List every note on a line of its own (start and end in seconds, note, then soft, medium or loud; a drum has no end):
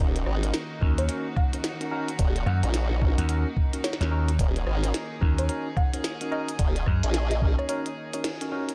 0.00 0.25 D#1 loud
0.00 8.75 D#3 medium
0.00 8.75 A#3 medium
0.00 0.39 C#4 medium
0.00 0.39 D#4 medium
0.00 8.75 D#4 medium
0.00 0.39 F#4 medium
0.00 4.39 F#4 medium
0.00 0.39 A#4 medium
0.16 closed hi-hat soft
0.26 0.52 G#1 loud
0.26 cross-stick soft
0.43 0.55 C#4 medium
0.43 0.55 D#4 medium
0.43 0.55 F#4 medium
0.43 0.55 A#4 medium
0.43 closed hi-hat soft
0.54 snare loud
0.54 closed hi-hat medium
0.81 1.07 D#2 medium
0.81 1.06 C#4 loud
0.81 1.06 D#4 medium
0.81 1.06 F#4 medium
0.81 1.06 A#4 loud
0.81 kick loud
0.98 1.34 C#5 medium
0.98 closed hi-hat medium
1.09 1.27 C#4 medium
1.09 1.27 D#4 medium
1.09 1.27 F#4 medium
1.09 1.27 A#4 loud
1.09 closed hi-hat medium
1.36 1.60 F#5 medium
1.36 kick loud
1.36 cross-stick soft
1.53 1.65 C#4 medium
1.53 1.65 D#4 medium
1.53 1.65 F#4 medium
1.53 1.66 A#4 medium
1.53 closed hi-hat soft
1.64 snare loud
1.64 closed hi-hat medium
1.81 1.90 C#4 medium
1.81 1.90 D#4 medium
1.81 1.90 F#4 medium
1.81 1.90 A#4 medium
1.81 closed hi-hat soft
1.91 2.09 C#4 medium
1.91 2.09 D#4 medium
1.91 2.09 F#4 medium
1.91 2.09 A#4 loud
2.08 closed hi-hat soft
2.19 2.45 D#1 medium
2.19 kick loud
2.19 closed hi-hat medium
2.36 closed hi-hat soft
2.46 2.61 F#2 medium
2.46 2.70 F#5 medium
2.46 cross-stick medium
2.63 3.16 A#1 loud
2.63 2.76 C#4 medium
2.63 2.76 D#4 medium
2.63 2.76 F#4 medium
2.63 2.76 A#4 medium
2.63 closed hi-hat soft
2.74 snare loud
2.74 closed hi-hat medium
3.02 3.26 C#4 loud
3.02 3.26 D#4 medium
3.02 3.26 F#4 medium
3.02 3.26 A#4 loud
3.02 kick loud
3.18 3.43 D#2 medium
3.18 3.25 F#5 medium
3.18 closed hi-hat medium
3.29 3.47 C#4 medium
3.29 3.47 D#4 medium
3.29 3.47 F#4 medium
3.29 3.47 A#4 loud
3.29 3.40 F#5 medium
3.29 closed hi-hat medium
3.57 kick loud
3.73 3.86 C#4 medium
3.73 3.86 D#4 medium
3.73 3.86 F#4 medium
3.73 3.86 A#4 medium
3.73 closed hi-hat soft
3.84 3.95 C#5 medium
3.84 snare loud
3.84 closed hi-hat medium
3.93 snare medium
4.01 4.37 D#2 medium
4.01 4.10 C#4 medium
4.01 4.10 D#4 medium
4.01 4.10 F#4 medium
4.01 4.10 A#4 medium
4.01 4.08 C#5 medium
4.01 snare medium
4.01 closed hi-hat soft
4.11 4.29 C#4 medium
4.11 4.29 D#4 medium
4.11 4.29 F#4 medium
4.11 4.29 A#4 loud
4.29 closed hi-hat medium
4.39 4.65 D#1 loud
4.39 8.75 G#4 medium
4.39 kick loud
4.39 closed hi-hat medium
4.56 closed hi-hat soft
4.67 4.93 G#1 loud
4.67 cross-stick medium
4.83 4.96 C#4 medium
4.83 4.96 D#4 medium
4.83 4.96 F#4 medium
4.83 4.96 A#4 medium
4.83 closed hi-hat soft
4.94 snare loud
4.94 closed hi-hat medium
5.21 5.48 D#2 loud
5.21 5.46 C#4 loud
5.21 5.46 D#4 medium
5.21 5.46 F#4 medium
5.21 5.46 A#4 loud
5.21 kick loud
5.38 5.75 C#5 medium
5.38 closed hi-hat medium
5.49 5.67 C#4 medium
5.49 5.67 D#4 medium
5.49 5.67 F#4 medium
5.49 5.67 A#4 loud
5.49 closed hi-hat medium
5.77 6.00 F#5 medium
5.77 kick loud
5.77 cross-stick soft
5.94 6.06 C#4 medium
5.94 6.06 D#4 medium
5.94 6.06 F#4 medium
5.94 6.06 A#4 medium
5.94 closed hi-hat medium
6.04 snare loud
6.04 closed hi-hat medium
6.21 6.30 C#4 medium
6.21 6.30 D#4 medium
6.21 6.30 F#4 medium
6.21 6.30 A#4 medium
6.21 closed hi-hat soft
6.31 6.50 C#4 medium
6.31 6.50 D#4 medium
6.31 6.50 F#4 medium
6.31 6.50 A#4 loud
6.31 6.55 D#5 medium
6.49 closed hi-hat medium
6.59 6.85 D#1 medium
6.59 kick loud
6.59 closed hi-hat medium
6.76 closed hi-hat soft
6.86 7.01 F#2 loud
6.86 kick medium
6.86 cross-stick medium
7.03 7.56 A#1 medium
7.03 7.16 C#4 medium
7.03 7.16 D#4 medium
7.03 7.16 F#4 medium
7.03 7.16 A#4 medium
7.03 closed hi-hat medium
7.14 snare loud
7.14 closed hi-hat medium
7.31 7.52 D#5 medium
7.31 closed hi-hat soft
7.42 7.66 C#4 medium
7.42 7.66 D#4 medium
7.42 7.66 F#4 medium
7.42 7.66 A#4 loud
7.42 kick loud
7.58 7.66 C#5 medium
7.58 cross-stick soft
7.69 7.87 C#4 medium
7.69 7.87 D#4 medium
7.69 7.87 F#4 medium
7.69 7.87 A#4 loud
7.69 7.80 C#5 medium
7.69 closed hi-hat medium
7.86 closed hi-hat soft
8.13 8.26 C#4 medium
8.13 8.26 D#4 medium
8.13 8.26 F#4 medium
8.13 8.26 A#4 medium
8.13 8.52 C#5 medium
8.13 closed hi-hat medium
8.24 snare loud
8.24 closed hi-hat medium
8.41 8.50 C#4 medium
8.41 8.50 D#4 medium
8.41 8.50 F#4 medium
8.41 8.51 A#4 medium
8.41 closed hi-hat soft
8.52 8.70 C#4 medium
8.52 8.70 D#4 medium
8.52 8.70 F#4 medium
8.52 8.70 A#4 loud
8.69 closed hi-hat medium